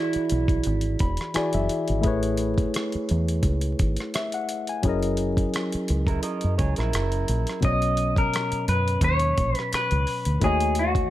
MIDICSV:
0, 0, Header, 1, 7, 480
1, 0, Start_track
1, 0, Tempo, 697674
1, 1406, Time_signature, 4, 2, 24, 8
1, 7637, End_track
2, 0, Start_track
2, 0, Title_t, "Clean electric guitar"
2, 0, Program_c, 0, 27
2, 0, Note_on_c, 0, 64, 73
2, 1147, Note_off_c, 0, 64, 0
2, 5261, Note_on_c, 0, 75, 92
2, 5626, Note_off_c, 0, 75, 0
2, 5629, Note_on_c, 0, 70, 79
2, 5975, Note_off_c, 0, 70, 0
2, 5978, Note_on_c, 0, 71, 78
2, 6219, Note_off_c, 0, 71, 0
2, 6222, Note_on_c, 0, 73, 90
2, 6587, Note_off_c, 0, 73, 0
2, 6587, Note_on_c, 0, 71, 90
2, 6706, Note_off_c, 0, 71, 0
2, 6709, Note_on_c, 0, 71, 83
2, 7183, Note_on_c, 0, 68, 80
2, 7191, Note_off_c, 0, 71, 0
2, 7421, Note_off_c, 0, 68, 0
2, 7426, Note_on_c, 0, 66, 74
2, 7637, Note_off_c, 0, 66, 0
2, 7637, End_track
3, 0, Start_track
3, 0, Title_t, "Clean electric guitar"
3, 0, Program_c, 1, 27
3, 4179, Note_on_c, 1, 70, 72
3, 4185, Note_on_c, 1, 64, 55
3, 4282, Note_off_c, 1, 70, 0
3, 4284, Note_off_c, 1, 64, 0
3, 4287, Note_on_c, 1, 75, 71
3, 4292, Note_on_c, 1, 70, 62
3, 4514, Note_off_c, 1, 75, 0
3, 4517, Note_off_c, 1, 70, 0
3, 4527, Note_on_c, 1, 73, 67
3, 4532, Note_on_c, 1, 68, 61
3, 4649, Note_off_c, 1, 73, 0
3, 4652, Note_off_c, 1, 68, 0
3, 4664, Note_on_c, 1, 70, 66
3, 4669, Note_on_c, 1, 64, 55
3, 5223, Note_off_c, 1, 70, 0
3, 5225, Note_off_c, 1, 64, 0
3, 7637, End_track
4, 0, Start_track
4, 0, Title_t, "Tine electric piano"
4, 0, Program_c, 2, 4
4, 0, Control_c, 2, 64, 127
4, 0, Note_on_c, 2, 52, 61
4, 0, Note_on_c, 2, 64, 53
4, 0, Note_on_c, 2, 66, 50
4, 0, Note_on_c, 2, 68, 54
4, 0, Note_on_c, 2, 74, 59
4, 691, Note_on_c, 2, 83, 59
4, 891, Note_off_c, 2, 52, 0
4, 898, Note_off_c, 2, 64, 0
4, 903, Note_off_c, 2, 66, 0
4, 909, Note_off_c, 2, 68, 0
4, 912, Note_off_c, 2, 83, 0
4, 914, Note_off_c, 2, 74, 0
4, 920, Note_on_c, 2, 52, 48
4, 927, Note_on_c, 2, 64, 47
4, 930, Note_on_c, 2, 80, 60
4, 934, Note_on_c, 2, 66, 46
4, 939, Note_on_c, 2, 68, 45
4, 944, Note_on_c, 2, 74, 58
4, 1048, Note_off_c, 2, 80, 0
4, 1062, Note_on_c, 2, 76, 61
4, 1385, Note_off_c, 2, 76, 0
4, 1385, Note_on_c, 2, 57, 68
4, 1388, Note_off_c, 2, 64, 0
4, 1396, Note_on_c, 2, 64, 64
4, 1398, Note_off_c, 2, 68, 0
4, 1403, Note_off_c, 2, 52, 0
4, 1406, Note_on_c, 2, 68, 66
4, 1410, Note_off_c, 2, 66, 0
4, 1413, Control_c, 2, 64, 0
4, 1415, Note_off_c, 2, 74, 0
4, 1418, Note_on_c, 2, 71, 64
4, 1429, Note_on_c, 2, 73, 75
4, 1537, Control_c, 2, 64, 127
4, 2856, Note_on_c, 2, 76, 56
4, 2973, Note_off_c, 2, 76, 0
4, 2986, Note_on_c, 2, 78, 62
4, 3209, Note_off_c, 2, 78, 0
4, 3228, Note_on_c, 2, 80, 57
4, 3288, Note_off_c, 2, 57, 0
4, 3293, Note_off_c, 2, 64, 0
4, 3298, Note_off_c, 2, 68, 0
4, 3304, Note_off_c, 2, 71, 0
4, 3310, Note_off_c, 2, 73, 0
4, 3320, Note_on_c, 2, 54, 69
4, 3330, Note_on_c, 2, 61, 62
4, 3335, Control_c, 2, 64, 0
4, 3337, Note_on_c, 2, 64, 62
4, 3346, Note_on_c, 2, 68, 66
4, 3356, Note_on_c, 2, 70, 64
4, 3365, Note_on_c, 2, 75, 76
4, 3450, Note_off_c, 2, 80, 0
4, 3457, Control_c, 2, 64, 127
4, 5215, Note_off_c, 2, 54, 0
4, 5220, Note_off_c, 2, 61, 0
4, 5224, Note_off_c, 2, 64, 0
4, 5228, Note_off_c, 2, 68, 0
4, 5233, Note_off_c, 2, 70, 0
4, 5233, Note_on_c, 2, 47, 60
4, 5238, Note_off_c, 2, 75, 0
4, 5239, Note_on_c, 2, 54, 50
4, 5253, Note_on_c, 2, 61, 54
4, 5254, Control_c, 2, 64, 0
4, 5262, Note_on_c, 2, 73, 51
4, 5273, Note_on_c, 2, 74, 50
4, 5307, Note_off_c, 2, 74, 0
4, 5318, Note_on_c, 2, 75, 61
4, 5371, Control_c, 2, 64, 127
4, 7132, Note_off_c, 2, 47, 0
4, 7135, Note_off_c, 2, 54, 0
4, 7142, Note_off_c, 2, 61, 0
4, 7146, Note_off_c, 2, 73, 0
4, 7155, Note_on_c, 2, 51, 58
4, 7164, Note_on_c, 2, 57, 52
4, 7174, Note_off_c, 2, 75, 0
4, 7174, Control_c, 2, 64, 0
4, 7175, Note_on_c, 2, 66, 52
4, 7185, Note_on_c, 2, 73, 56
4, 7196, Note_on_c, 2, 75, 61
4, 7308, Control_c, 2, 64, 127
4, 7637, Note_off_c, 2, 51, 0
4, 7637, Note_off_c, 2, 57, 0
4, 7637, Note_off_c, 2, 66, 0
4, 7637, Note_off_c, 2, 73, 0
4, 7637, Note_off_c, 2, 75, 0
4, 7637, End_track
5, 0, Start_track
5, 0, Title_t, "Fingered electric bass"
5, 0, Program_c, 3, 33
5, 219, Note_on_c, 3, 35, 78
5, 419, Note_off_c, 3, 35, 0
5, 458, Note_on_c, 3, 32, 83
5, 659, Note_off_c, 3, 32, 0
5, 697, Note_on_c, 3, 28, 84
5, 803, Note_off_c, 3, 28, 0
5, 1062, Note_on_c, 3, 30, 82
5, 1154, Note_off_c, 3, 30, 0
5, 1304, Note_on_c, 3, 32, 76
5, 1395, Note_off_c, 3, 32, 0
5, 1409, Note_on_c, 3, 33, 85
5, 1820, Note_off_c, 3, 33, 0
5, 2139, Note_on_c, 3, 40, 83
5, 2340, Note_off_c, 3, 40, 0
5, 2367, Note_on_c, 3, 37, 83
5, 2572, Note_off_c, 3, 37, 0
5, 2620, Note_on_c, 3, 32, 78
5, 2724, Note_off_c, 3, 32, 0
5, 3336, Note_on_c, 3, 30, 90
5, 3744, Note_off_c, 3, 30, 0
5, 4060, Note_on_c, 3, 37, 80
5, 4260, Note_off_c, 3, 37, 0
5, 4432, Note_on_c, 3, 42, 78
5, 4520, Note_off_c, 3, 42, 0
5, 4541, Note_on_c, 3, 37, 84
5, 4645, Note_off_c, 3, 37, 0
5, 4667, Note_on_c, 3, 34, 72
5, 4757, Note_off_c, 3, 34, 0
5, 4779, Note_on_c, 3, 30, 79
5, 4979, Note_off_c, 3, 30, 0
5, 5017, Note_on_c, 3, 34, 80
5, 5123, Note_off_c, 3, 34, 0
5, 5258, Note_on_c, 3, 35, 85
5, 5665, Note_off_c, 3, 35, 0
5, 5973, Note_on_c, 3, 42, 76
5, 6176, Note_off_c, 3, 42, 0
5, 6207, Note_on_c, 3, 39, 86
5, 6413, Note_off_c, 3, 39, 0
5, 6460, Note_on_c, 3, 34, 82
5, 6565, Note_off_c, 3, 34, 0
5, 6823, Note_on_c, 3, 37, 79
5, 6915, Note_off_c, 3, 37, 0
5, 7060, Note_on_c, 3, 38, 70
5, 7153, Note_off_c, 3, 38, 0
5, 7173, Note_on_c, 3, 39, 85
5, 7583, Note_off_c, 3, 39, 0
5, 7637, End_track
6, 0, Start_track
6, 0, Title_t, "Muted fingered electric bass strokes"
6, 108, Note_on_c, 9, 29, 40
6, 177, Note_off_c, 9, 29, 0
6, 935, Note_on_c, 9, 29, 44
6, 1003, Note_off_c, 9, 29, 0
6, 2030, Note_on_c, 9, 29, 42
6, 2099, Note_off_c, 9, 29, 0
6, 3954, Note_on_c, 9, 29, 43
6, 4022, Note_off_c, 9, 29, 0
6, 5864, Note_on_c, 9, 29, 41
6, 5933, Note_off_c, 9, 29, 0
6, 6696, Note_on_c, 9, 29, 42
6, 6765, Note_off_c, 9, 29, 0
6, 7637, End_track
7, 0, Start_track
7, 0, Title_t, "Drums"
7, 91, Note_on_c, 9, 42, 38
7, 160, Note_off_c, 9, 42, 0
7, 203, Note_on_c, 9, 42, 59
7, 272, Note_off_c, 9, 42, 0
7, 332, Note_on_c, 9, 36, 78
7, 339, Note_on_c, 9, 42, 36
7, 401, Note_off_c, 9, 36, 0
7, 408, Note_off_c, 9, 42, 0
7, 437, Note_on_c, 9, 42, 71
7, 506, Note_off_c, 9, 42, 0
7, 558, Note_on_c, 9, 42, 40
7, 627, Note_off_c, 9, 42, 0
7, 683, Note_on_c, 9, 42, 60
7, 690, Note_on_c, 9, 36, 73
7, 752, Note_off_c, 9, 42, 0
7, 759, Note_off_c, 9, 36, 0
7, 805, Note_on_c, 9, 42, 42
7, 832, Note_on_c, 9, 37, 34
7, 874, Note_off_c, 9, 42, 0
7, 901, Note_off_c, 9, 37, 0
7, 923, Note_on_c, 9, 42, 79
7, 935, Note_on_c, 9, 37, 90
7, 992, Note_off_c, 9, 42, 0
7, 1004, Note_off_c, 9, 37, 0
7, 1051, Note_on_c, 9, 42, 37
7, 1120, Note_off_c, 9, 42, 0
7, 1166, Note_on_c, 9, 42, 64
7, 1234, Note_off_c, 9, 42, 0
7, 1291, Note_on_c, 9, 42, 39
7, 1360, Note_off_c, 9, 42, 0
7, 1400, Note_on_c, 9, 42, 61
7, 1404, Note_on_c, 9, 36, 91
7, 1469, Note_off_c, 9, 42, 0
7, 1473, Note_off_c, 9, 36, 0
7, 1532, Note_on_c, 9, 42, 41
7, 1601, Note_off_c, 9, 42, 0
7, 1634, Note_on_c, 9, 42, 60
7, 1702, Note_off_c, 9, 42, 0
7, 1773, Note_on_c, 9, 36, 91
7, 1776, Note_on_c, 9, 42, 41
7, 1841, Note_off_c, 9, 36, 0
7, 1845, Note_off_c, 9, 42, 0
7, 1885, Note_on_c, 9, 42, 71
7, 1901, Note_on_c, 9, 37, 94
7, 1954, Note_off_c, 9, 42, 0
7, 1970, Note_off_c, 9, 37, 0
7, 2012, Note_on_c, 9, 42, 38
7, 2080, Note_off_c, 9, 42, 0
7, 2124, Note_on_c, 9, 42, 59
7, 2193, Note_off_c, 9, 42, 0
7, 2260, Note_on_c, 9, 42, 38
7, 2329, Note_off_c, 9, 42, 0
7, 2358, Note_on_c, 9, 36, 86
7, 2358, Note_on_c, 9, 42, 75
7, 2427, Note_off_c, 9, 36, 0
7, 2427, Note_off_c, 9, 42, 0
7, 2486, Note_on_c, 9, 42, 39
7, 2555, Note_off_c, 9, 42, 0
7, 2609, Note_on_c, 9, 42, 60
7, 2612, Note_on_c, 9, 36, 76
7, 2678, Note_off_c, 9, 42, 0
7, 2680, Note_off_c, 9, 36, 0
7, 2728, Note_on_c, 9, 42, 41
7, 2755, Note_on_c, 9, 37, 35
7, 2797, Note_off_c, 9, 42, 0
7, 2824, Note_off_c, 9, 37, 0
7, 2848, Note_on_c, 9, 42, 86
7, 2859, Note_on_c, 9, 37, 93
7, 2916, Note_off_c, 9, 42, 0
7, 2928, Note_off_c, 9, 37, 0
7, 2974, Note_on_c, 9, 42, 38
7, 3043, Note_off_c, 9, 42, 0
7, 3087, Note_on_c, 9, 42, 61
7, 3156, Note_off_c, 9, 42, 0
7, 3215, Note_on_c, 9, 42, 39
7, 3284, Note_off_c, 9, 42, 0
7, 3324, Note_on_c, 9, 42, 68
7, 3327, Note_on_c, 9, 36, 89
7, 3393, Note_off_c, 9, 42, 0
7, 3396, Note_off_c, 9, 36, 0
7, 3457, Note_on_c, 9, 42, 44
7, 3526, Note_off_c, 9, 42, 0
7, 3558, Note_on_c, 9, 42, 66
7, 3626, Note_off_c, 9, 42, 0
7, 3695, Note_on_c, 9, 36, 89
7, 3700, Note_on_c, 9, 42, 42
7, 3764, Note_off_c, 9, 36, 0
7, 3769, Note_off_c, 9, 42, 0
7, 3809, Note_on_c, 9, 42, 72
7, 3825, Note_on_c, 9, 37, 97
7, 3878, Note_off_c, 9, 42, 0
7, 3893, Note_off_c, 9, 37, 0
7, 3938, Note_on_c, 9, 42, 39
7, 4007, Note_off_c, 9, 42, 0
7, 4046, Note_on_c, 9, 42, 58
7, 4115, Note_off_c, 9, 42, 0
7, 4173, Note_on_c, 9, 36, 80
7, 4183, Note_on_c, 9, 42, 37
7, 4242, Note_off_c, 9, 36, 0
7, 4252, Note_off_c, 9, 42, 0
7, 4284, Note_on_c, 9, 42, 69
7, 4353, Note_off_c, 9, 42, 0
7, 4410, Note_on_c, 9, 42, 38
7, 4478, Note_off_c, 9, 42, 0
7, 4532, Note_on_c, 9, 42, 57
7, 4534, Note_on_c, 9, 36, 83
7, 4601, Note_off_c, 9, 42, 0
7, 4603, Note_off_c, 9, 36, 0
7, 4653, Note_on_c, 9, 42, 40
7, 4680, Note_on_c, 9, 37, 33
7, 4722, Note_off_c, 9, 42, 0
7, 4749, Note_off_c, 9, 37, 0
7, 4770, Note_on_c, 9, 42, 82
7, 4782, Note_on_c, 9, 37, 91
7, 4839, Note_off_c, 9, 42, 0
7, 4851, Note_off_c, 9, 37, 0
7, 4897, Note_on_c, 9, 42, 37
7, 4966, Note_off_c, 9, 42, 0
7, 5010, Note_on_c, 9, 42, 64
7, 5079, Note_off_c, 9, 42, 0
7, 5138, Note_on_c, 9, 42, 41
7, 5156, Note_on_c, 9, 37, 27
7, 5207, Note_off_c, 9, 42, 0
7, 5225, Note_off_c, 9, 37, 0
7, 5246, Note_on_c, 9, 42, 66
7, 5248, Note_on_c, 9, 36, 89
7, 5315, Note_off_c, 9, 42, 0
7, 5317, Note_off_c, 9, 36, 0
7, 5379, Note_on_c, 9, 42, 43
7, 5448, Note_off_c, 9, 42, 0
7, 5484, Note_on_c, 9, 42, 62
7, 5553, Note_off_c, 9, 42, 0
7, 5617, Note_on_c, 9, 36, 92
7, 5624, Note_on_c, 9, 42, 41
7, 5685, Note_off_c, 9, 36, 0
7, 5692, Note_off_c, 9, 42, 0
7, 5734, Note_on_c, 9, 42, 76
7, 5750, Note_on_c, 9, 37, 99
7, 5803, Note_off_c, 9, 42, 0
7, 5819, Note_off_c, 9, 37, 0
7, 5860, Note_on_c, 9, 42, 40
7, 5929, Note_off_c, 9, 42, 0
7, 5972, Note_on_c, 9, 42, 57
7, 6041, Note_off_c, 9, 42, 0
7, 6107, Note_on_c, 9, 42, 37
7, 6176, Note_off_c, 9, 42, 0
7, 6200, Note_on_c, 9, 36, 81
7, 6202, Note_on_c, 9, 42, 72
7, 6269, Note_off_c, 9, 36, 0
7, 6271, Note_off_c, 9, 42, 0
7, 6326, Note_on_c, 9, 42, 37
7, 6395, Note_off_c, 9, 42, 0
7, 6451, Note_on_c, 9, 42, 58
7, 6452, Note_on_c, 9, 36, 76
7, 6519, Note_off_c, 9, 42, 0
7, 6521, Note_off_c, 9, 36, 0
7, 6570, Note_on_c, 9, 42, 42
7, 6597, Note_on_c, 9, 37, 35
7, 6639, Note_off_c, 9, 42, 0
7, 6665, Note_off_c, 9, 37, 0
7, 6691, Note_on_c, 9, 42, 89
7, 6703, Note_on_c, 9, 37, 94
7, 6760, Note_off_c, 9, 42, 0
7, 6772, Note_off_c, 9, 37, 0
7, 6817, Note_on_c, 9, 42, 39
7, 6886, Note_off_c, 9, 42, 0
7, 6928, Note_on_c, 9, 46, 45
7, 6996, Note_off_c, 9, 46, 0
7, 7054, Note_on_c, 9, 42, 41
7, 7123, Note_off_c, 9, 42, 0
7, 7165, Note_on_c, 9, 42, 67
7, 7166, Note_on_c, 9, 36, 93
7, 7234, Note_off_c, 9, 42, 0
7, 7235, Note_off_c, 9, 36, 0
7, 7296, Note_on_c, 9, 42, 44
7, 7365, Note_off_c, 9, 42, 0
7, 7397, Note_on_c, 9, 42, 61
7, 7465, Note_off_c, 9, 42, 0
7, 7533, Note_on_c, 9, 36, 87
7, 7538, Note_on_c, 9, 42, 42
7, 7602, Note_off_c, 9, 36, 0
7, 7607, Note_off_c, 9, 42, 0
7, 7637, End_track
0, 0, End_of_file